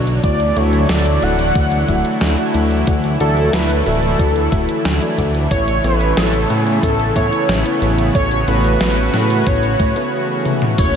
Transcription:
Already playing: analog synth bass B1, analog synth pad B2 D3 F#3 F#4 C#5, fm electric piano B3 D4 F#4 D5
0.07 closed hi-hat
0.23 analog synth bass D2, analog synth pad E3 A3 E4, fm electric piano A3 E4 F#4 D5, analog synth lead D5, kick, closed hi-hat
0.40 closed hi-hat
0.56 analog synth bass D2, fm electric piano A3 E4 F#4 D5, analog synth lead C#5, closed hi-hat
0.73 closed hi-hat
0.89 analog synth bass D2, fm electric piano A3 E4 F#4 D5, analog synth lead D5, snare, closed hi-hat
1.06 closed hi-hat
1.22 analog synth bass D1, fm electric piano A3 E4 F#4 D5, analog synth lead F#5, closed hi-hat
1.39 closed hi-hat
1.55 analog synth bass D2, fm electric piano A3 E4 F#4 D5, kick, closed hi-hat
1.72 closed hi-hat
1.88 analog synth bass D1, fm electric piano A3 E4 F#4 E5, kick, closed hi-hat
2.05 closed hi-hat
2.21 analog synth bass D2, snare, closed hi-hat
2.38 fm electric piano A3 E4 F#4 D5, closed hi-hat
2.54 analog synth bass D2, fm electric piano A3 E4 F#4 D5, closed hi-hat
2.71 closed hi-hat
2.87 analog synth bass D2, fm electric piano A3 E4 F#4 D5, analog synth pad A3, kick, closed hi-hat
3.04 closed hi-hat
3.20 analog synth bass D2, fm electric piano A3 E4 F#4 D5, analog synth lead A4, closed hi-hat
3.37 closed hi-hat
3.53 analog synth bass D2, fm electric piano A3 E4 F#4 D5, analog synth lead B4, snare, closed hi-hat
3.70 closed hi-hat
3.86 analog synth bass D1, fm electric piano A3 E4 F#4 D5, analog synth lead A4, closed hi-hat
4.03 closed hi-hat
4.19 analog synth bass D2, fm electric piano A3 E4 F#4 D5, kick, closed hi-hat
4.36 closed hi-hat
4.52 analog synth bass D1, fm electric piano A3 E4 F#4 E5, kick, closed hi-hat
4.69 closed hi-hat
4.85 analog synth bass D2, snare, closed hi-hat
5.02 fm electric piano A3 E4 F#4 D5, closed hi-hat
5.18 analog synth bass D2, fm electric piano A3 E4 F#4 D5, kick, closed hi-hat
5.35 closed hi-hat
5.51 analog synth bass A1, analog synth pad C#3 A3 B3, fm electric piano B3 E4 A4 C#5, analog synth lead C#5, kick, closed hi-hat
5.68 closed hi-hat
5.84 analog synth bass A1, fm electric piano B3 E4 A4 C#5, analog synth lead B4, closed hi-hat
6.01 closed hi-hat
6.17 analog synth bass A1, fm electric piano B3 E4 A4 C#5, analog synth lead A4, snare, closed hi-hat
6.34 closed hi-hat
6.50 analog synth bass A2, fm electric piano B3 E4 A4 C#5, closed hi-hat
6.61 analog synth lead G#4
6.67 closed hi-hat
6.83 analog synth bass A1, fm electric piano B3 E4 A4 C#5, analog synth lead A4, kick, closed hi-hat
7.00 closed hi-hat
7.16 analog synth bass A2, fm electric piano B3 E4 A4 E5, analog synth lead C#5, kick, closed hi-hat
7.33 closed hi-hat
7.49 analog synth bass A1, snare, closed hi-hat
7.65 fm electric piano B3 E4 A4 C#5, closed hi-hat
7.82 analog synth bass A1, fm electric piano B3 E4 A4 C#5, closed hi-hat
7.98 closed hi-hat
8.15 analog synth bass A1, fm electric piano B3 E4 A4 C#5, analog synth pad F#4, analog synth lead C#5, kick, closed hi-hat
8.31 closed hi-hat
8.48 analog synth bass A1, fm electric piano B3 E4 A4 C#5, analog synth lead B4, closed hi-hat
8.64 closed hi-hat
8.80 analog synth bass A1, fm electric piano B3, analog synth lead B4, snare, closed hi-hat
8.97 closed hi-hat
9.14 analog synth bass A2, fm electric piano B3 E4 A4 C#5, snare, closed hi-hat
9.30 closed hi-hat
9.47 analog synth bass A1, fm electric piano B3 E4 A4 C#5, analog synth lead C#5, kick, closed hi-hat
9.63 closed hi-hat
9.79 analog synth bass A2, kick, closed hi-hat
9.96 fm electric piano B3 E4 A4 C#5, closed hi-hat
10.45 high tom
10.62 mid tom
10.78 analog synth bass F#1, analog synth pad C#3 E3 F#3 A3 E4, fm electric piano A3 E4 F#4 C#5, analog synth lead C#5, kick, closed hi-hat, crash, tambourine, sub drop

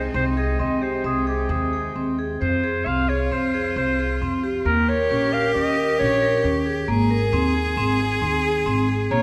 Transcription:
Already playing: upright bass C2, harmonium C3 G#3 G5, cello D#4, vibraphone G#4
0.14 upright bass C2, harmonium G#3, vibraphone C4, clarinet C5
0.37 vibraphone G#4, clarinet D#5
0.59 upright bass D#2, vibraphone C4, clarinet D#5
0.82 vibraphone G4, clarinet C5
1.04 upright bass C2, vibraphone C4, clarinet G#4
1.27 clarinet G4, vibraphone G#4
1.49 upright bass D#2, vibraphone C4, clarinet G#4
1.73 vibraphone G#4
1.96 upright bass D#2, vibraphone C4
2.19 vibraphone G#4
2.40 upright bass F2, vibraphone C4, cello F4, clarinet C5
2.64 vibraphone G#4
2.86 upright bass C2, vibraphone C4, clarinet F5
3.09 vibraphone G#4, clarinet C#5
3.31 upright bass F2, vibraphone C4, clarinet C5
3.54 vibraphone G#4
3.76 upright bass C2, vibraphone C4, clarinet C5
3.99 vibraphone G#4
4.22 upright bass F2, vibraphone C4
4.43 vibraphone G4
4.65 upright bass D#2, vibraphone A#3, cello G4, clarinet A#4
4.89 vibraphone A#4, clarinet C#5
5.11 upright bass A#1, vibraphone C#4
5.33 vibraphone A#4, clarinet F5
5.54 upright bass D#2, vibraphone C#4, clarinet D#5
5.77 vibraphone A#4
5.99 upright bass A#1, vibraphone C#4, clarinet C#5
6.22 vibraphone A#4
6.44 upright bass D#2, vibraphone C#4
6.66 vibraphone G#4
6.88 upright bass G#1, vibraphone A#3, cello G#4
7.10 vibraphone A#4
7.32 upright bass D#2, vibraphone C4
7.55 vibraphone G#4
7.77 upright bass G#1, vibraphone C4
8.00 vibraphone G#4
8.21 upright bass D#2, vibraphone C4
8.44 vibraphone G#4
8.66 upright bass G#1, vibraphone C4
8.88 vibraphone G#4
9.11 upright bass A#1, vibraphone A#3, cello F4, clarinet C#5

